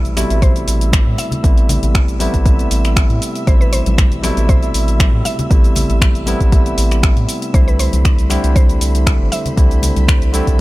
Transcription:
Already playing: B2 C3 G3 A3 E4 C5 E5 E6
0.05 A1, closed hi-hat, shaker
0.16 B2 C3 G3 A3 E4, finger snap, open hi-hat, high conga, shaker
0.30 A1, closed hi-hat, shaker
0.42 C5, kick, closed hi-hat, shaker
0.56 closed hi-hat, shaker
0.68 A1, open hi-hat, shaker
0.81 closed hi-hat, shaker
0.93 finger snap, kick, closed hi-hat, high conga, shaker
1.07 A2
1.18 E5, open hi-hat, muted conga, shaker
1.31 closed hi-hat, low conga, shaker
1.43 A1 C3 G3 A3 B3 E4, kick, closed hi-hat, shaker
1.58 closed hi-hat, shaker
1.69 open hi-hat, muted conga, low conga, shaker
1.83 A1, closed hi-hat, high conga, shaker
1.95 finger snap, kick, closed hi-hat, shaker
2.08 A1, closed hi-hat, shaker
2.19 C3 G3 A3 B3 E4, open hi-hat, high conga, shaker
2.34 A1, kick, closed hi-hat, shaker
2.46 kick, closed hi-hat, shaker
2.59 closed hi-hat, muted conga, shaker
2.71 A1, open hi-hat, shaker
2.85 finger snap, closed hi-hat, shaker
2.96 finger snap, kick, closed hi-hat, shaker
3.10 A2, closed hi-hat
3.22 open hi-hat, shaker
3.35 closed hi-hat, shaker
3.46 A1 B2 C3 G3 A3 E4 C5, kick, closed hi-hat, shaker
3.61 B4, shaker
3.73 C5, open hi-hat, muted conga, shaker
3.86 A1, closed hi-hat, high conga, shaker
3.98 finger snap, kick, closed hi-hat, shaker
4.12 A1, closed hi-hat, shaker
4.22 B2 C3 G3 A3 E4, finger snap, open hi-hat, high conga, shaker
4.37 A1, closed hi-hat, shaker
4.49 C5, kick, closed hi-hat, shaker
4.63 closed hi-hat, shaker
4.74 A1, open hi-hat, shaker
4.88 closed hi-hat, shaker
5.00 finger snap, kick, closed hi-hat, high conga, shaker
5.13 A2
5.25 E5, open hi-hat, muted conga, shaker
5.39 closed hi-hat, low conga, shaker
5.50 A1 C3 G3 A3 B3 E4, kick, closed hi-hat, shaker
5.64 closed hi-hat, shaker
5.76 open hi-hat, muted conga, low conga, shaker
5.90 A1, closed hi-hat, high conga, shaker
6.01 finger snap, kick, closed hi-hat, shaker
6.15 A1, closed hi-hat, shaker
6.26 C3 G3 A3 B3 E4, open hi-hat, high conga, shaker
6.41 A1, kick, closed hi-hat, shaker
6.52 kick, closed hi-hat, shaker
6.66 closed hi-hat, muted conga, shaker
6.78 A1, open hi-hat, shaker
6.91 finger snap, closed hi-hat, shaker
7.03 finger snap, kick, closed hi-hat, shaker
7.17 A2, closed hi-hat
7.29 open hi-hat, shaker
7.42 closed hi-hat, shaker
7.53 C2 D3 G3 A3 C4 E4 C5 B5, kick, closed hi-hat, shaker
7.68 B4, shaker
7.79 C5, open hi-hat, muted conga, shaker
7.93 C2, closed hi-hat, high conga, shaker
8.05 finger snap, kick, closed hi-hat, shaker
8.18 C2, closed hi-hat, shaker
8.29 D3 G3 A3 C4 E4, finger snap, open hi-hat, high conga, shaker
8.44 C2, closed hi-hat, shaker
8.56 C5, kick, closed hi-hat, shaker
8.69 closed hi-hat, shaker
8.81 C2, open hi-hat, shaker
8.95 closed hi-hat, shaker
9.07 finger snap, kick, closed hi-hat, high conga, shaker
9.20 G1
9.32 E5, open hi-hat, muted conga, shaker
9.46 closed hi-hat, low conga, shaker
9.56 C2 D3 G3 A3 C4 E4, kick, closed hi-hat, shaker
9.71 closed hi-hat, shaker
9.83 open hi-hat, muted conga, low conga, shaker
9.96 C2, closed hi-hat, high conga, shaker
10.08 finger snap, kick, closed hi-hat, shaker
10.22 C2, closed hi-hat, shaker
10.33 D3 G3 A3 C4 E4, open hi-hat, high conga, shaker
10.47 C2, kick, closed hi-hat, shaker

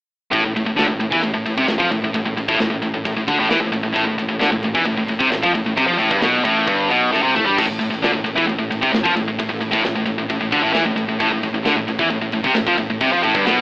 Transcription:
0.32 A1 A2, kick, ride
0.45 A1 A2
0.56 A1 A2, ride
0.66 A1 A2
0.77 D3, snare, ride
0.81 D2
0.88 A2
0.92 A1
1.00 A1 A2, ride
1.12 E2 E3, kick
1.23 A1 A2, ride
1.34 A1 A2
1.46 A1 A2, ride
1.58 C2 C3, kick
1.68 A1 A2, snare, ride
1.79 F2 F3, kick
1.91 A1 A2, ride
2.03 A1 A2
2.14 A1 A2, kick, ride
2.26 A1 A2
2.37 A1 A2, ride
2.48 A1 A2, kick
2.60 A1 A2, snare, ride
2.70 A1 A2
2.82 A1 A2, ride
2.94 A1 A2
3.05 A1 A2, kick, ride
3.17 A1 A2
3.28 D2 D3, kick, ride
3.40 A1 A2
3.50 E2 E3, snare, ride
3.61 A1 A2
3.72 A1 A2, ride
3.83 A1 A2
3.94 A1 A2, kick, ride
4.05 A2
4.11 A1
4.18 A1 A2, ride
4.29 A1 A2
4.40 D2 D3, snare, ride
4.52 A1 A2
4.63 A1 A2, ride
4.75 E2 E3, kick
4.85 A1 A2, ride
4.97 A1 A2
5.08 A1 A2, ride
5.19 C2 C3, kick
5.30 A1 A2, snare, ride
5.43 F2 F3, kick
5.54 A1 A2, ride
5.66 A1 A2
5.77 C2 C3, kick, ride
5.87 F2 F3
5.98 A1 A2, ride
6.10 G1 G2, kick
6.21 B1 B2, snare, ride
6.44 A1 A2, kick, ride
6.67 G1 G2, kick, ride
6.88 B1 B2, ride
7.12 A1 A2, snare
7.22 C2 C3
7.34 A2 A3, mid tom
7.46 G2 G3, floor tom
7.56 A1 A2, kick, crash, splash
7.67 A1 A2
7.79 A2, ride
7.84 A1
7.90 A1 A2, snare
8.02 D2 D3, snare, ride
8.13 A1 A2
8.24 A1 A2, ride
8.36 E2 E3, kick
8.47 A1 A2, ride
8.59 A1 A2
8.71 A1 A2, ride
8.81 C2 C3, kick
8.93 A1 A2, snare, ride
9.04 F2 F3, kick
9.16 A1 A2, ride
9.28 A1 A2
9.39 A1 A2, kick, ride
9.49 A1 A2
9.61 A1 A2, ride
9.71 A1 A2, kick, snare
9.84 A1 A2, snare, ride
9.95 A1 A2
10.06 A1 A2, ride
10.18 A1 A2
10.30 A1 A2, kick, ride
10.41 A1 A2
10.52 D2 D3, kick, ride
10.63 A1 A2
10.73 E2 E3, snare, ride
10.85 A1 A2
10.95 A1 A2, ride
11.08 A1 A2
11.20 A1 A2, kick, ride
11.30 A1 A2
11.42 A1 A2, ride
11.52 A1 A2
11.65 D2 D3, snare, ride
11.77 A1 A2
11.88 A1 A2, ride
11.99 E2 E3, kick
12.10 A1 A2, ride
12.21 A1 A2
12.32 A1 A2, ride
12.44 C2 C3, kick
12.55 A1 A2, snare, ride
12.66 F2 F3, kick
12.78 A1 A2, ride
12.90 A1 A2
13.01 C2 C3, kick, ride
13.12 F2 F3
13.23 A1 A2, ride
13.34 G1 G2, kick
13.46 B1 B2, snare, ride

